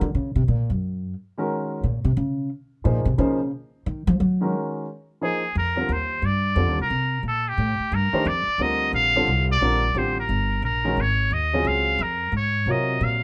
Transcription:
0.01 0.13 D3 medium
0.15 0.35 C#3 medium
0.36 0.47 C3 medium
0.48 0.69 A#2 medium
0.70 1.12 F#2 medium
1.38 1.81 D#3 medium
1.38 1.81 G#3 medium
1.38 1.81 C#4 medium
1.38 1.82 F#4 medium
1.38 1.82 A#4 medium
1.83 2.04 A#2 medium
2.05 2.16 C3 medium
2.17 2.48 C#3 medium
2.84 3.05 A#2 medium
2.84 3.04 F3 medium
2.84 3.04 A#3 medium
2.84 3.04 D#4 medium
2.84 3.05 G#4 medium
2.84 3.05 C5 medium
3.05 3.18 C3 medium
3.18 3.50 C#3 medium
3.18 3.38 F3 medium
3.18 3.38 A#3 medium
3.18 3.38 D#4 medium
3.18 3.38 G#4 medium
3.18 3.39 C5 medium
3.86 4.07 D#3 medium
4.07 4.19 F3 loud
4.20 4.51 F#3 medium
4.41 4.85 D#3 medium
4.41 4.85 G#3 medium
4.41 4.85 C#4 medium
4.41 4.85 F#4 medium
4.41 4.85 A#4 medium
5.21 5.41 F3 medium
5.21 5.41 A#3 medium
5.21 5.41 D#4 medium
5.21 5.42 G#4 medium
5.21 5.54 G#4 medium
5.21 5.42 C5 medium
5.55 5.88 F2 medium
5.55 5.94 A#4 medium
5.76 5.87 D3 medium
5.76 5.88 G3 medium
5.76 5.88 C4 medium
5.76 5.88 F4 medium
5.76 5.88 A#4 medium
5.89 6.22 D#2 medium
5.89 6.27 C5 medium
6.22 6.55 G2 medium
6.22 6.80 D5 medium
6.56 6.68 F2 medium
6.56 6.76 D3 medium
6.56 6.76 G3 medium
6.56 6.76 C4 medium
6.56 6.76 F4 medium
6.56 6.77 A4 medium
6.68 6.78 D#2 medium
6.79 6.90 C2 medium
6.79 7.23 A#4 medium
6.90 7.22 C3 medium
7.23 7.56 A#2 medium
7.28 7.50 A4 medium
7.49 7.96 G4 loud
7.58 7.78 A2 medium
7.80 muted upright bass stroke soft
7.92 8.12 G2 medium
7.92 8.29 A#4 medium
8.13 8.24 D#3 medium
8.13 8.24 A3 medium
8.13 8.25 D4 medium
8.13 8.25 G4 medium
8.13 8.25 C5 medium
8.13 muted upright bass stroke soft
8.25 8.46 F2 medium
8.25 8.64 D5 loud
8.47 muted upright bass stroke soft
8.58 8.92 D2 medium
8.58 9.11 D3 medium
8.58 9.11 G3 medium
8.58 9.12 C4 medium
8.58 9.12 F4 medium
8.58 9.12 A#4 medium
8.58 8.94 D#5 loud
8.93 9.26 A#1 medium
8.93 9.46 F5 loud
9.16 9.26 D3 medium
9.16 9.27 G3 medium
9.16 9.27 C4 medium
9.16 9.27 F4 medium
9.16 9.27 A4 medium
9.27 9.60 C2 medium
9.52 10.00 D5 loud
9.61 9.94 A#1 medium
9.61 9.81 D3 medium
9.61 9.81 G3 medium
9.61 9.81 C4 medium
9.61 9.82 F4 medium
9.61 9.82 A#4 medium
9.95 10.28 A1 medium
9.95 10.15 D3 medium
9.95 10.15 G3 soft
9.95 10.15 C4 soft
9.95 10.16 F4 soft
9.95 10.16 G4 medium
9.95 10.19 C5 medium
10.20 10.61 A#4 medium
10.29 10.62 G1 medium
10.62 10.96 A#1 medium
10.62 11.03 A#4 medium
10.84 10.96 D#3 medium
10.84 10.96 G#3 medium
10.84 10.96 C#4 medium
10.84 10.96 F#4 medium
10.84 10.96 A#4 medium
10.97 11.30 G#1 medium
11.01 11.35 C#5 loud
11.31 11.64 D#2 medium
11.31 11.69 D#5 medium
11.53 11.97 C#3 medium
11.53 11.97 F#3 medium
11.53 11.97 C4 medium
11.53 11.97 F4 medium
11.53 11.98 G#4 medium
11.65 11.98 C#2 medium
11.65 12.04 F5 loud
11.99 12.31 F2 medium
11.99 12.35 A#4 medium
12.32 12.65 G#2 medium
12.37 12.73 C#5 loud
12.66 12.99 C3 medium
12.66 13.19 C3 medium
12.66 13.19 F#3 medium
12.66 13.19 F4 medium
12.66 13.19 A#4 medium
12.66 13.19 C#5 medium
12.71 13.05 D#5 medium
13.01 13.23 A#2 medium
13.01 13.23 F5 loud

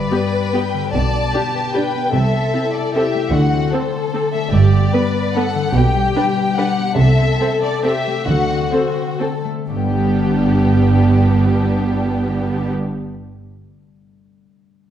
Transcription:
0.00 0.94 G2 soft
0.00 1.12 D4 soft
0.00 0.31 B4 soft
0.00 0.88 B4 medium
0.00 0.53 D5 medium
0.10 0.19 B3 soft
0.10 0.53 G4 soft
0.10 0.19 G4 soft
0.32 1.54 B4 soft
0.53 0.61 B3 soft
0.53 1.32 G4 soft
0.53 0.62 G4 soft
0.53 0.93 G5 medium
0.74 0.95 D3 soft
0.93 1.25 B1 medium
0.93 2.15 B2 soft
0.93 1.25 B2 soft
0.93 1.33 D5 soft
0.93 1.72 A5 medium
1.13 2.15 D4 soft
1.33 1.42 D4 soft
1.33 1.73 G4 soft
1.33 1.74 G4 soft
1.33 1.42 G4 soft
1.55 2.15 B4 soft
1.74 1.84 D4 soft
1.74 2.14 G4 soft
1.74 1.83 G4 soft
1.74 2.13 B4 soft
1.74 2.14 G5 medium
1.95 2.15 B3 soft
2.13 2.45 C2 soft
2.13 2.44 C3 soft
2.13 3.34 C3 soft
2.13 2.93 A4 soft
2.13 2.74 E5 medium
2.33 3.51 C4 soft
2.53 2.61 C4 soft
2.53 2.93 E4 soft
2.53 2.62 A4 soft
2.74 3.92 A4 soft
2.74 2.94 D5 medium
2.94 3.04 C4 soft
2.94 3.34 E4 soft
2.94 3.33 G4 soft
2.94 3.03 A4 soft
2.94 3.33 E5 medium
3.15 4.33 A3 soft
3.32 3.64 D2 medium
3.32 3.64 D3 soft
3.32 4.54 D3 soft
3.32 3.72 F#4 soft
3.32 3.73 F#5 medium
3.53 4.54 C4 soft
3.72 3.80 C4 soft
3.72 4.13 D4 soft
3.72 3.81 A4 soft
3.72 4.53 A4 soft
3.72 4.14 C5 soft
3.94 4.54 A4 soft
4.14 4.22 C4 soft
4.14 4.91 D4 soft
4.14 4.22 A4 soft
4.33 4.54 A3 soft
4.33 4.51 E5 medium
4.52 4.84 G1 medium
4.52 5.76 G2 soft
4.52 4.84 G2 medium
4.52 4.92 G4 soft
4.52 5.35 D5 medium
4.72 6.77 B3 soft
4.92 5.01 B3 soft
4.92 5.33 D4 soft
4.92 5.01 B4 soft
4.92 5.35 B4 medium
5.14 6.35 B4 soft
5.34 5.44 B3 soft
5.34 6.13 D4 soft
5.34 5.75 A4 soft
5.34 5.44 B4 soft
5.34 5.74 F#5 medium
5.55 5.76 D3 soft
5.74 6.06 B1 medium
5.74 6.99 B2 soft
5.74 6.07 B2 medium
5.74 6.94 G4 soft
5.74 6.58 G5 medium
5.94 6.99 G3 soft
6.15 6.57 D4 soft
6.15 6.24 D4 soft
6.15 6.24 B4 soft
6.36 6.99 B4 soft
6.57 6.66 D4 soft
6.57 6.99 D4 soft
6.57 6.66 B4 soft
6.57 6.98 F#5 medium
6.78 6.99 B3 soft
6.97 7.30 C2 medium
6.97 7.30 C3 medium
6.97 8.28 C3 medium
6.97 7.81 A4 soft
6.97 7.60 E5 medium
7.18 7.61 C4 soft
7.39 7.48 C4 soft
7.39 7.83 A4 soft
7.39 7.48 A4 soft
7.62 8.47 C4 soft
7.62 7.84 D5 medium
7.83 7.91 C4 soft
7.83 8.26 G4 soft
7.83 8.70 A4 soft
7.83 7.92 A4 soft
7.83 8.26 E5 medium
8.07 9.43 A3 soft
8.26 8.61 D2 medium
8.26 9.71 D3 soft
8.26 8.61 D3 soft
8.26 9.19 F#4 soft
8.26 8.71 F#5 medium
8.48 8.94 C4 soft
8.71 8.80 C4 soft
8.71 9.18 A4 soft
8.71 8.80 A4 soft
8.71 9.21 C5 soft
8.95 9.71 C4 soft
9.19 9.28 C4 soft
9.19 9.71 A4 soft
9.19 9.29 A4 soft
9.19 9.46 A4 soft
9.45 9.71 A3 soft
9.69 12.69 G1 soft
9.69 13.59 G2 soft
9.69 12.70 G2 soft
9.69 12.70 G3 soft
9.69 12.70 B3 soft
9.69 12.70 D4 soft
9.69 12.69 G4 soft
9.76 13.33 G3 soft
9.84 12.94 B3 soft
9.90 12.90 D4 soft
9.98 12.97 G4 soft
10.04 13.04 D5 soft

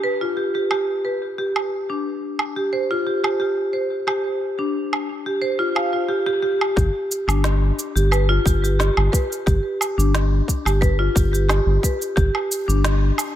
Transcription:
0.04 0.20 B4 medium
0.21 0.36 F4 medium
0.37 0.47 G4 medium
0.55 0.70 G4 medium
0.71 0.88 G4 medium
0.71 low woodblock medium
1.05 1.21 B4 medium
1.38 1.55 G4 medium
1.56 low woodblock medium
1.90 2.05 D4 medium
2.39 low woodblock medium
2.56 2.72 G4 medium
2.73 2.90 C5 medium
2.91 3.06 F4 loud
3.07 3.17 G4 medium
3.24 3.38 G4 medium
3.24 low woodblock medium
3.40 3.57 G4 medium
3.73 3.90 C5 medium
4.07 4.24 G4 medium
4.07 low woodblock medium
4.59 4.74 D4 medium
4.93 low woodblock medium
5.26 5.42 G4 medium
5.42 5.59 C5 medium
5.59 5.75 F4 loud
5.75 5.92 F5 medium
5.75 low woodblock medium
5.93 6.03 F4 medium
6.08 6.25 G4 medium
6.26 6.41 G4 loud
6.42 6.59 G4 medium
6.61 low woodblock medium
6.76 6.90 G1 loud
6.76 6.94 G4 medium
6.76 kick loud
6.76 shaker soft
7.12 shaker medium
7.27 7.71 G1 medium
7.27 7.43 D4 medium
7.27 low woodblock medium
7.27 shaker soft
7.44 snare loud
7.44 shaker soft
7.79 shaker medium
7.95 8.39 G1 medium
7.95 8.11 G4 medium
7.95 shaker soft
8.11 8.29 B4 medium
8.11 low woodblock medium
8.11 shaker soft
8.29 8.45 F4 loud
8.45 8.90 G1 medium
8.45 8.56 G4 medium
8.45 kick loud
8.45 shaker medium
8.64 8.78 G4 medium
8.64 shaker soft
8.79 8.96 G4 medium
8.79 snare loud
8.79 shaker soft
8.97 9.09 G1 medium
8.97 low woodblock medium
9.12 9.30 B4 medium
9.12 kick loud
9.12 shaker medium
9.32 shaker soft
9.46 9.60 G1 loud
9.46 9.64 G4 medium
9.46 kick loud
9.46 shaker soft
9.81 low woodblock medium
9.81 shaker medium
9.98 10.41 G1 medium
9.98 10.13 D4 medium
9.98 shaker soft
10.15 snare loud
10.15 shaker soft
10.48 kick medium
10.48 shaker medium
10.65 11.09 G1 medium
10.65 10.81 G4 medium
10.65 low woodblock medium
10.65 shaker soft
10.81 10.98 B4 medium
10.81 kick loud
10.81 shaker soft
10.99 11.14 F4 loud
11.15 11.60 G1 loud
11.15 11.26 G4 medium
11.15 kick loud
11.15 shaker medium
11.33 11.47 G4 medium
11.33 shaker soft
11.49 11.66 G4 medium
11.49 snare loud
11.49 low woodblock medium
11.49 shaker soft
11.66 11.78 G1 medium
11.83 12.00 B4 medium
11.83 kick medium
11.83 shaker medium
12.02 shaker soft
12.16 12.30 G1 loud
12.16 12.33 G4 medium
12.16 kick loud
12.16 shaker soft
12.35 low woodblock medium
12.52 shaker medium
12.68 13.11 G1 loud
12.68 12.83 D4 medium
12.68 shaker soft
12.84 snare loud
12.84 shaker soft
13.18 low woodblock medium
13.18 shaker medium

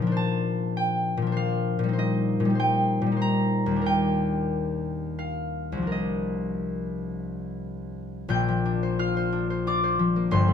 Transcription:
0.00 1.16 A#2 medium
0.00 1.21 F3 medium
0.00 0.14 D#4 medium
0.00 0.16 G#4 medium
0.00 0.19 D#5 medium
0.00 0.19 G#5 medium
0.07 1.25 D4 medium
0.12 1.31 C5 medium
0.17 2.01 A5 loud
0.77 1.80 G5 medium
1.17 1.78 A#2 medium
1.22 1.94 F3 medium
1.27 1.96 D4 medium
1.32 1.92 C5 medium
1.37 2.01 F5 medium
1.79 2.39 A#2 medium
1.84 2.44 G3 medium
1.89 2.49 D#4 medium
1.93 2.54 C5 medium
1.99 5.89 D#5 medium
2.40 3.00 A#2 medium
2.45 3.05 G3 medium
2.50 3.11 D#4 medium
2.55 3.15 C5 medium
2.60 3.85 G5 medium
3.02 3.78 A#2 medium
3.06 3.70 G3 soft
3.12 7.02 D#4 medium
3.17 3.86 C5 medium
3.22 7.12 A#5 loud
3.66 5.85 D#2 medium
3.71 7.61 G3 soft
3.76 5.81 D4 soft
3.81 5.86 A#4 soft
3.86 7.76 G5 medium
5.19 6.46 F5 medium
5.72 8.23 C2 medium
5.77 8.47 F3 soft
5.82 8.64 D4 soft
5.87 9.77 A#4 soft
5.92 8.33 D#5 medium
8.29 10.35 A#1 medium
8.29 10.36 A#2 medium
8.29 10.53 G5 medium
8.29 10.53 G6 loud
8.48 9.98 F3 medium
8.66 9.31 D4 medium
8.83 9.15 C5 medium
8.99 9.66 F4 medium
8.99 10.53 F5 medium
8.99 10.53 F6 loud
9.17 9.49 C5 medium
9.32 10.53 D4 medium
9.50 9.82 C5 medium
9.67 10.53 F4 medium
9.67 10.53 D5 medium
9.67 10.53 D6 medium
9.84 10.32 C5 medium
9.99 10.53 F3 medium
10.16 10.53 A#3 medium
10.31 10.53 G1 medium
10.31 10.53 G2 medium
10.31 10.53 C5 medium
10.31 10.53 C6 medium
10.48 10.53 A3 medium

